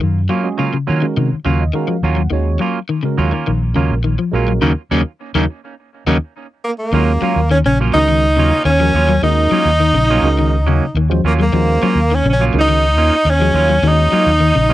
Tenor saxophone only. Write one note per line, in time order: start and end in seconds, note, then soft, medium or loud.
6.64 6.71 A#3 medium
6.79 7.47 A#3 medium
7.51 7.58 C#4 loud
7.66 7.79 C#4 medium
7.94 8.62 D#4 loud
8.65 9.19 C#4 loud
9.23 10.94 D#4 loud
11.27 11.33 A#3 medium
11.42 12.16 A#3 medium
12.15 12.28 C#4 loud
12.33 12.44 C#4 medium
12.60 13.31 D#4 loud
13.30 13.89 C#4 loud
13.88 14.73 D#4 loud